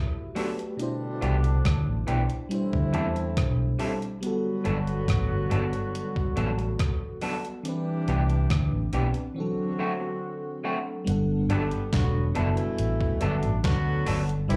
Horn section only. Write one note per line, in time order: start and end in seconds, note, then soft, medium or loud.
0.00 0.33 B2 medium
0.00 0.32 E3 medium
0.00 0.33 A3 medium
0.00 0.32 E4 medium
0.79 2.05 B2 medium
0.79 2.05 D3 medium
0.79 2.05 G3 medium
0.79 2.05 D4 medium
2.51 3.77 E3 medium
2.51 3.77 A3 medium
2.51 3.77 C4 medium
2.51 3.77 E4 medium
4.21 7.18 D3 medium
4.21 7.18 F#3 medium
4.21 7.18 B3 medium
4.21 7.18 F#4 medium
7.64 8.90 E3 medium
7.64 8.90 G3 medium
7.64 8.90 D4 medium
7.64 8.90 G4 medium
9.36 10.62 D3 medium
9.36 10.62 F#3 medium
9.36 10.62 C4 medium
9.36 10.62 F#4 medium
11.50 11.85 D3 medium
11.50 11.84 G3 medium
11.50 11.84 B3 medium
11.50 11.84 G4 medium
11.93 12.27 D3 medium
11.93 12.27 F#3 medium
11.93 12.28 B3 medium
11.93 12.27 F#4 medium
12.36 13.17 B2 medium
12.36 13.17 E3 medium
12.36 13.17 A3 medium
12.36 13.17 E4 loud
13.22 13.56 B2 medium
13.22 13.56 D3 medium
13.22 13.56 A3 medium
13.22 13.56 D4 medium
13.64 14.25 D3 loud
13.64 14.25 F#3 loud
13.64 14.25 B3 loud
13.64 14.25 F#4 loud
14.49 14.56 B2 loud
14.49 14.56 E3 loud
14.49 14.56 G3 loud
14.49 14.56 E4 loud